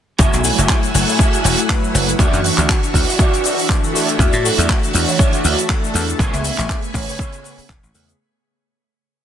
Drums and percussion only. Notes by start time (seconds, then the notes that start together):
0.19 kick, closed hi-hat, shaker
0.33 closed hi-hat, shaker
0.44 open hi-hat, shaker
0.58 closed hi-hat, shaker
0.69 kick, clap, closed hi-hat, shaker
0.83 closed hi-hat, shaker
0.94 open hi-hat, shaker
1.08 open hi-hat, shaker
1.19 kick, closed hi-hat, shaker
1.33 closed hi-hat, shaker
1.44 open hi-hat, shaker
1.58 closed hi-hat, shaker
1.69 kick, clap, closed hi-hat, shaker
1.84 shaker
1.95 open hi-hat, shaker
2.08 closed hi-hat, shaker
2.19 kick, closed hi-hat, shaker
2.33 closed hi-hat, shaker
2.44 open hi-hat, shaker
2.58 clap, closed hi-hat, shaker
2.69 kick, clap, closed hi-hat, shaker
2.83 closed hi-hat, shaker
2.94 kick, open hi-hat, shaker
3.09 open hi-hat, shaker
3.19 kick, closed hi-hat, shaker
3.34 closed hi-hat, shaker
3.44 open hi-hat, shaker
3.58 open hi-hat, shaker
3.69 kick, clap, shaker
3.84 shaker
3.95 open hi-hat, shaker
4.08 closed hi-hat, shaker
4.19 kick, closed hi-hat, shaker
4.33 closed hi-hat, shaker
4.45 open hi-hat, shaker
4.58 closed hi-hat, shaker
4.69 kick, clap, closed hi-hat, shaker
4.83 closed hi-hat, shaker
4.93 open hi-hat, shaker
5.08 open hi-hat, shaker
5.19 kick, closed hi-hat, shaker
5.33 closed hi-hat, shaker
5.45 open hi-hat, shaker
5.59 closed hi-hat, shaker
5.69 kick, clap, closed hi-hat, shaker
5.84 shaker
5.94 open hi-hat, shaker
6.08 closed hi-hat, shaker
6.19 kick, closed hi-hat, shaker
6.34 closed hi-hat, shaker
6.44 open hi-hat, shaker
6.58 clap, closed hi-hat, shaker
6.69 kick, clap, closed hi-hat, shaker
6.82 closed hi-hat, shaker
6.94 kick, open hi-hat, shaker
7.09 open hi-hat, shaker
7.19 kick, closed hi-hat, shaker
7.32 closed hi-hat, shaker
7.44 open hi-hat, shaker
7.58 open hi-hat, shaker
7.69 kick, clap, shaker
7.84 shaker
7.95 open hi-hat, shaker
8.09 closed hi-hat, shaker